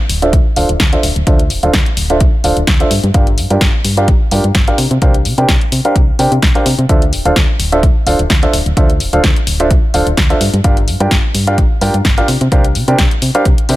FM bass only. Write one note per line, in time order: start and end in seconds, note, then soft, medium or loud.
0.10 0.35 D1 medium
0.33 0.41 D2 medium
0.57 0.65 D1 medium
0.69 0.76 D1 medium
0.80 0.96 D2 medium
1.03 1.12 D1 medium
1.16 1.23 D1 loud
1.27 1.52 D2 loud
1.50 1.59 D1 medium
1.63 1.70 D1 medium
1.74 1.82 D2 loud
1.97 2.22 D1 medium
2.21 2.29 D2 medium
2.44 2.52 D1 medium
2.57 2.64 D1 medium
2.68 2.84 D2 medium
2.91 2.99 G2 medium
3.04 3.11 G2 loud
3.14 3.39 G1 loud
3.38 3.46 G2 medium
3.50 3.58 G2 medium
3.61 3.70 G1 loud
3.85 4.10 G2 medium
4.08 4.16 G1 medium
4.32 4.40 G2 medium
4.44 4.51 G2 medium
4.55 4.71 G1 medium
4.78 4.87 C3 medium
4.91 4.98 C3 loud
5.02 5.27 C2 loud
5.25 5.34 C3 medium
5.38 5.45 C3 medium
5.49 5.57 C2 medium
5.72 5.80 C3 medium
5.96 6.12 C2 medium
6.19 6.27 C3 medium
6.32 6.39 C3 loud
6.42 6.51 C2 medium
6.66 6.74 C3 loud
6.79 6.86 C3 medium
6.89 7.14 D2 loud
7.13 7.21 D1 medium
7.25 7.32 D1 medium
7.36 7.45 D2 loud
7.60 7.85 D1 medium
7.83 7.91 D2 medium
8.06 8.15 D1 medium
8.19 8.26 D1 medium
8.30 8.46 D2 medium
8.53 8.62 D1 medium
8.66 8.73 D1 loud
8.77 9.02 D2 loud
9.00 9.09 D1 medium
9.13 9.20 D1 medium
9.24 9.32 D2 medium
9.47 9.72 D1 medium
9.71 9.79 D2 medium
9.94 10.02 D1 medium
10.07 10.14 D1 medium
10.17 10.34 D2 medium
10.41 10.49 G2 medium
10.54 10.61 G2 loud
10.64 10.89 G1 medium
10.88 10.96 G2 medium
11.00 11.07 G2 loud
11.11 11.20 G1 loud
11.34 11.60 G2 medium
11.58 11.66 G1 medium
11.81 11.90 G2 medium
11.94 12.01 G2 medium
12.05 12.21 G1 medium
12.28 12.37 C3 medium
12.41 12.48 C3 loud
12.52 12.77 C2 loud
12.75 12.84 C3 medium
12.88 12.95 C3 loud
12.99 13.07 C2 medium
13.22 13.30 C3 medium
13.46 13.54 C2 medium
13.69 13.76 C3 medium